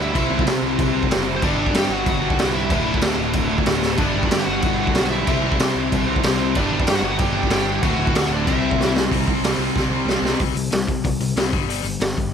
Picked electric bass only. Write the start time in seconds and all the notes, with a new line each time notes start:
Already playing: D2
0.15 C2
0.30 C2
0.46 C3
0.62 C2
0.79 C2
1.11 F#1
1.43 G1
1.57 G1
1.74 G2
1.89 G1
2.07 G1
2.37 C2
2.69 D1
2.86 D1
3.02 D2
3.19 D1
3.34 D1
3.66 D1
3.98 G1
4.16 G1
4.32 G2
4.47 G1
4.63 G1
4.94 B1
5.28 C2
5.44 C2
5.59 C3
5.76 C2
5.92 C2
6.24 C2
6.55 G1
6.72 G1
6.88 G2
7.02 G1
7.19 G1
7.49 G1
7.83 D1
7.97 D1
8.13 D2
8.29 D1
8.47 C2
8.78 C2
9.11 C2
9.42 C2
9.58 C2
9.76 C2
9.90 C2
10.05 C2
10.22 C2
10.40 C2
10.56 C2
10.72 C2
11.04 C2
11.20 C2
11.36 C2
11.53 G1
11.67 G1
11.83 G1
12.00 G1
12.17 G1